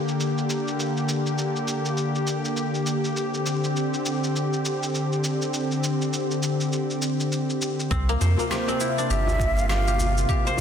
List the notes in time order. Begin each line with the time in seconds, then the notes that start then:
Already playing: D3 A#3 G4
0.08 shaker
0.20 shaker
0.38 shaker
0.50 shaker
0.68 shaker
0.80 shaker
0.97 shaker
1.09 shaker
1.26 shaker
1.38 shaker
1.56 shaker
1.68 shaker
1.85 shaker
1.97 shaker
2.15 shaker
2.27 shaker
2.45 shaker
2.57 shaker
2.74 shaker
2.87 shaker
3.04 shaker
3.16 D3 C4, shaker
3.34 shaker
3.46 shaker
3.64 shaker
3.76 shaker
3.94 shaker
4.06 shaker
4.24 shaker
4.36 shaker
4.53 shaker
4.65 shaker
4.83 shaker
4.95 shaker
5.12 shaker
5.24 shaker
5.42 shaker
5.54 shaker
5.71 shaker
5.84 shaker
6.01 shaker
6.13 shaker
6.31 shaker
6.43 shaker
6.60 shaker
6.73 shaker
6.90 shaker
7.02 shaker
7.20 shaker
7.32 shaker
7.50 shaker
7.62 shaker
7.80 shaker
7.91 C2 C3 A#3 C4 F4, kick, shaker
8.09 A#3, shaker
8.21 F2 C5, djembe tone, shaker
8.37 A#3, djembe tone, djembe bass, shaker
8.51 G4 C5, cross-stick, shaker
8.68 C4, djembe slap, shaker
8.80 E4, shaker
8.98 D4, shaker
9.10 G1 G4 E5, shaker
9.27 djembe tone, djembe bass, shaker
9.38 kick, djembe tone, shaker
9.57 F5, shaker
9.69 G4 F5, cross-stick, shaker
9.87 G4, djembe slap, shaker
9.98 djembe bass, shaker
10.18 shaker
10.29 G4, kick, shaker
10.45 C5, djembe tone, shaker
10.57 djembe tone